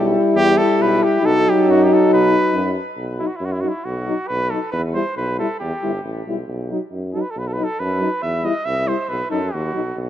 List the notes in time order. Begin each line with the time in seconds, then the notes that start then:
Already playing: B1 G3 E4
0.35 E2 G4
0.58 A4
0.79 B1 B4
1.03 G4
1.22 B1 F#3 D#4 A4
1.49 G4
1.67 F#2 F#4
1.83 G4
1.93 A4
2.11 B1 B4
2.53 F#2
2.97 B1
3.19 F#3 D#4 E4
3.27 F#4
3.36 E4
3.40 F#2
3.45 F#4
3.52 E4
3.60 F#3 D#4 F#4
3.68 E4
3.84 B1 F#4
4.07 F#3 D#4
4.28 B1 B4
4.50 F#3 D#4 A4
4.72 E2 B4
4.94 G3 E4 C5
5.17 B1 B4
5.39 G3 E4 A4
5.60 E2 G4
5.83 G1 G3 E4
6.04 A1
6.26 B1 G3 E4
6.47 B1
6.71 F#3 D#4
6.92 F#2
7.13 F#3 D#4 A4
7.21 B4
7.31 A4
7.36 B1 B4
7.47 A4
7.53 B4
7.57 F#3 D#4
7.64 A4
7.79 F#2 B4
8.00 F#3 D#4
8.22 E2 E5
8.43 G3 E4 D#5
8.65 C2 E5
8.87 G3 E4 C5
9.09 B1 B4
9.30 F#2 F#3 D#4 A4
9.53 D#2 F#4
9.73 B1 F#3 D#4
9.96 B1